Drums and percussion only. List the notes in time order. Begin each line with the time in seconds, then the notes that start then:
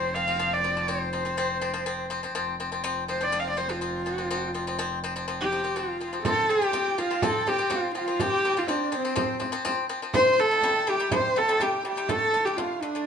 6.25 frame drum
6.62 frame drum
6.73 frame drum
6.98 frame drum
7.22 frame drum
7.47 frame drum
7.59 frame drum
7.71 frame drum
8.19 frame drum
8.56 frame drum
8.68 frame drum
8.93 frame drum
9.17 frame drum
9.41 frame drum
9.53 frame drum
9.66 frame drum
10.14 frame drum
10.51 frame drum
10.62 frame drum
10.87 frame drum
11.11 frame drum
11.37 frame drum
11.49 frame drum
11.60 frame drum
12.09 frame drum
12.46 frame drum
12.58 frame drum
12.82 frame drum